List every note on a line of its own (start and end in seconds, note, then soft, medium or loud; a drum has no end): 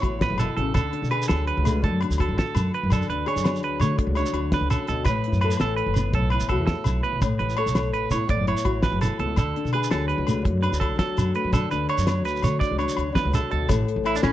0.00 0.24 A1 medium
0.00 0.18 A2 medium
0.00 0.75 E3 medium
0.00 0.75 B3 medium
0.00 0.75 E4 soft
0.00 1.11 F#4 soft
0.00 0.20 C#5 medium
0.00 kick medium
0.00 closed hi-hat soft
0.00 low agogo medium
0.19 0.39 A2 medium
0.19 0.39 B4 medium
0.19 kick medium
0.19 snare medium
0.19 closed hi-hat medium
0.30 0.44 F#1 medium
0.38 0.58 B2 soft
0.38 0.55 A4 medium
0.38 closed hi-hat soft
0.38 low agogo medium
0.38 shekere medium
0.57 0.71 A1 medium
0.57 0.76 C#3 medium
0.57 0.74 A4 medium
0.57 closed hi-hat soft
0.74 0.89 D2 medium
0.74 1.81 D3 medium
0.74 1.10 A4 medium
0.74 kick medium
0.74 closed hi-hat medium
0.74 low agogo medium
0.74 shekere medium
0.93 2.01 D4 medium
0.93 closed hi-hat soft
1.02 1.23 B2 medium
1.02 shekere soft
1.11 2.19 G#4 medium
1.11 1.28 B4 medium
1.11 closed hi-hat soft
1.11 low agogo medium
1.22 shekere medium
1.28 1.50 D2 medium
1.28 2.36 F#3 medium
1.28 1.46 A4 medium
1.28 snare medium
1.28 closed hi-hat medium
1.28 low agogo medium
1.47 1.82 B4 medium
1.47 closed hi-hat soft
1.57 1.85 C#2 medium
1.64 3.30 A3 medium
1.64 closed hi-hat soft
1.64 low agogo medium
1.64 shekere medium
1.82 2.04 F#2 medium
1.82 2.88 D3 medium
1.82 2.01 A4 medium
1.82 kick medium
1.82 closed hi-hat medium
2.01 2.90 D4 medium
2.01 muted clean electric guitar stroke medium
2.01 closed hi-hat soft
2.01 low agogo medium
2.10 2.30 D2 medium
2.10 shekere medium
2.18 3.26 F#4 soft
2.18 2.37 A4 medium
2.18 kick medium
2.18 closed hi-hat soft
2.18 low agogo medium
2.28 2.42 A1 medium
2.38 2.72 A4 medium
2.38 muted nylon-string guitar stroke medium
2.38 kick medium
2.38 snare medium
2.38 closed hi-hat medium
2.55 2.69 F#2 medium
2.55 closed hi-hat soft
2.55 low agogo medium
2.55 shekere medium
2.74 2.91 B4 medium
2.74 closed hi-hat soft
2.83 3.03 F#2 medium
2.90 3.96 D3 medium
2.90 3.09 A4 medium
2.90 kick medium
2.90 closed hi-hat soft
2.90 low agogo medium
2.90 shekere medium
3.02 shekere soft
3.09 3.23 D2 medium
3.09 4.16 D4 soft
3.09 3.27 B4 medium
3.09 closed hi-hat soft
3.26 4.34 G#4 medium
3.26 3.62 C#5 medium
3.26 closed hi-hat soft
3.26 low agogo medium
3.36 3.62 F#2 medium
3.36 shekere medium
3.44 5.04 F#3 medium
3.44 snare medium
3.44 closed hi-hat medium
3.44 low agogo medium
3.56 shekere soft
3.62 3.76 D2 medium
3.62 3.81 B4 medium
3.62 closed hi-hat soft
3.80 3.94 D3 medium
3.80 5.98 A3 medium
3.80 3.98 C#5 medium
3.80 closed hi-hat soft
3.80 low agogo medium
3.80 shekere medium
3.97 4.52 D3 medium
3.97 muted clean electric guitar stroke medium
3.97 kick medium
3.97 closed hi-hat medium
4.06 4.21 C#2 medium
4.15 5.05 D4 medium
4.15 4.51 C#5 medium
4.15 closed hi-hat soft
4.15 low agogo medium
4.15 shekere soft
4.26 shekere medium
4.33 4.54 D2 medium
4.33 5.06 F#4 soft
4.33 closed hi-hat soft
4.33 low agogo medium
4.52 4.71 D3 medium
4.52 4.70 B4 medium
4.52 kick medium
4.52 snare medium
4.52 closed hi-hat medium
4.61 4.75 C#2 medium
4.70 4.88 C#3 soft
4.70 4.87 A4 medium
4.70 closed hi-hat soft
4.70 low agogo medium
4.70 shekere medium
4.87 5.02 D2 medium
4.87 5.07 B2 medium
4.87 5.05 A4 medium
4.87 closed hi-hat soft
4.87 shekere soft
5.05 5.19 A1 medium
5.05 6.14 A2 medium
5.05 5.40 B4 medium
5.05 kick medium
5.05 closed hi-hat medium
5.05 low agogo medium
5.05 shekere medium
5.24 6.33 E4 medium
5.24 closed hi-hat soft
5.32 5.53 F#2 medium
5.32 shekere soft
5.41 6.51 A4 medium
5.41 5.59 B4 medium
5.41 closed hi-hat soft
5.41 low agogo medium
5.51 shekere medium
5.57 5.80 A1 medium
5.57 5.76 A4 medium
5.57 snare medium
5.57 closed hi-hat medium
5.57 low agogo medium
5.62 6.69 E3 medium
5.76 6.11 B4 medium
5.76 closed hi-hat soft
5.86 6.14 F#1 medium
5.94 closed hi-hat soft
5.94 low agogo medium
5.94 shekere medium
5.98 7.02 B3 soft
6.13 6.34 B1 medium
6.13 7.20 A2 medium
6.13 6.31 A4 medium
6.13 kick medium
6.13 closed hi-hat medium
6.30 7.21 E4 medium
6.30 6.49 B4 medium
6.30 closed hi-hat soft
6.30 low agogo medium
6.40 6.58 A1 medium
6.40 shekere medium
6.49 7.22 F#4 medium
6.49 6.65 A4 medium
6.49 kick medium
6.49 closed hi-hat soft
6.49 low agogo medium
6.58 6.72 E2 medium
6.67 7.01 A4 medium
6.67 kick medium
6.67 snare medium
6.67 closed hi-hat medium
6.84 6.99 B1 medium
6.84 closed hi-hat soft
6.84 low agogo medium
6.84 shekere medium
7.03 7.19 B3 soft
7.03 7.21 B4 medium
7.03 closed hi-hat soft
7.13 7.33 B1 medium
7.22 8.26 A2 medium
7.22 muted clean electric guitar stroke medium
7.22 kick medium
7.22 closed hi-hat medium
7.22 low agogo medium
7.22 shekere medium
7.39 7.53 A1 medium
7.39 8.46 E4 medium
7.39 7.56 B4 medium
7.39 closed hi-hat soft
7.50 shekere soft
7.57 8.64 A4 medium
7.57 7.92 C#5 medium
7.57 closed hi-hat soft
7.57 low agogo medium
7.66 7.92 B1 medium
7.66 shekere medium
7.75 snare medium
7.75 closed hi-hat medium
7.75 low agogo medium
7.92 8.06 A1 medium
7.92 8.11 B4 medium
7.92 closed hi-hat soft
8.11 8.25 A2 medium
8.11 9.18 B3 medium
8.11 8.29 C#5 medium
8.11 closed hi-hat soft
8.11 low agogo medium
8.11 shekere medium
8.27 9.34 A2 medium
8.27 8.47 D5 medium
8.27 kick medium
8.27 closed hi-hat medium
8.37 8.51 F#1 medium
8.47 9.35 E4 medium
8.47 8.82 C#5 medium
8.47 closed hi-hat soft
8.47 low agogo medium
8.57 shekere medium
8.65 8.86 A1 medium
8.65 9.74 F#4 medium
8.65 kick medium
8.65 closed hi-hat soft
8.65 low agogo medium
8.82 9.37 E3 medium
8.82 9.00 B4 medium
8.82 kick medium
8.82 snare medium
8.82 closed hi-hat medium
8.92 9.06 F#1 medium
9.01 9.19 A4 medium
9.01 closed hi-hat soft
9.01 low agogo medium
9.01 shekere medium
9.19 9.33 C#2 medium
9.19 9.35 B3 soft
9.19 9.37 A4 medium
9.19 closed hi-hat soft
9.36 9.51 D2 medium
9.36 10.41 D3 medium
9.36 9.72 A4 medium
9.36 kick medium
9.36 closed hi-hat medium
9.36 low agogo medium
9.36 shekere medium
9.56 10.60 D4 medium
9.56 closed hi-hat soft
9.65 9.85 B2 medium
9.65 shekere soft
9.73 10.81 G#4 medium
9.73 9.91 B4 medium
9.73 closed hi-hat soft
9.73 low agogo medium
9.84 shekere medium
9.91 10.12 D2 medium
9.91 10.95 F#3 medium
9.91 10.08 A4 medium
9.91 snare medium
9.91 closed hi-hat medium
9.91 low agogo medium
10.08 10.43 B4 medium
10.08 closed hi-hat soft
10.18 10.47 C#2 medium
10.26 11.34 A3 medium
10.26 closed hi-hat soft
10.26 low agogo medium
10.26 shekere medium
10.42 10.66 F#2 medium
10.42 11.49 D3 medium
10.42 muted clean electric guitar stroke medium
10.42 kick medium
10.42 closed hi-hat medium
10.61 11.50 D4 medium
10.61 10.80 B4 medium
10.61 closed hi-hat soft
10.61 low agogo medium
10.72 10.91 D2 medium
10.72 shekere medium
10.80 11.89 F#4 medium
10.80 10.98 A4 medium
10.80 kick medium
10.80 closed hi-hat soft
10.80 low agogo medium
10.91 11.05 A1 medium
10.96 11.49 F#3 medium
10.96 11.33 A4 medium
10.96 kick medium
10.96 snare medium
10.96 closed hi-hat medium
11.17 11.31 F#2 medium
11.17 closed hi-hat soft
11.17 low agogo medium
11.17 shekere medium
11.34 12.43 A3 medium
11.34 11.53 B4 medium
11.34 closed hi-hat soft
11.44 11.65 F#2 medium
11.52 12.59 D3 medium
11.52 11.70 A4 medium
11.52 kick medium
11.52 closed hi-hat medium
11.52 low agogo medium
11.52 shekere medium
11.71 11.85 D2 medium
11.71 12.77 D4 medium
11.71 11.88 B4 medium
11.71 closed hi-hat soft
11.71 shekere soft
11.89 12.24 C#5 medium
11.89 closed hi-hat soft
11.89 low agogo medium
11.98 12.25 F#2 medium
11.98 shekere medium
12.07 13.67 F#3 medium
12.07 snare medium
12.07 closed hi-hat medium
12.07 low agogo medium
12.07 shekere soft
12.25 12.39 D2 medium
12.25 12.42 B4 medium
12.25 closed hi-hat soft
12.25 shekere soft
12.36 shekere soft
12.42 12.57 D3 medium
12.42 14.32 A3 soft
12.42 12.60 C#5 medium
12.42 closed hi-hat soft
12.42 low agogo medium
12.42 shekere medium
12.60 13.11 D3 medium
12.60 12.78 D5 medium
12.60 kick medium
12.60 closed hi-hat medium
12.60 shekere soft
12.71 12.84 C#2 medium
12.78 13.67 D4 medium
12.78 13.13 C#5 medium
12.78 snare soft
12.78 closed hi-hat soft
12.78 low agogo medium
12.89 shekere medium
12.96 13.18 D2 medium
12.96 13.69 F#4 soft
12.96 closed hi-hat soft
12.96 low agogo medium
13.12 13.31 D3 medium
13.12 13.32 B4 medium
13.12 kick medium
13.12 snare medium
13.12 closed hi-hat medium
13.25 13.38 C#2 medium
13.31 13.50 A4 medium
13.31 muted nylon-string guitar stroke soft
13.31 closed hi-hat soft
13.31 low agogo medium
13.31 shekere medium
13.50 13.66 D2 medium
13.50 13.69 B2 medium
13.50 13.69 A4 medium
13.50 closed hi-hat soft
13.68 13.83 A1 loud
13.68 14.32 A2 medium
13.68 14.32 A4 medium
13.68 kick medium
13.68 closed hi-hat medium
13.68 low agogo medium
13.68 shekere medium
13.88 closed hi-hat medium
13.96 14.17 A1 medium
14.04 14.32 E3 medium
14.04 14.15 E4 medium
14.04 closed hi-hat soft
14.04 low agogo medium
14.16 14.23 D4 medium
14.16 shekere medium
14.22 14.31 A2 medium
14.22 14.32 C#4 medium
14.22 snare medium
14.22 closed hi-hat medium
14.22 low agogo medium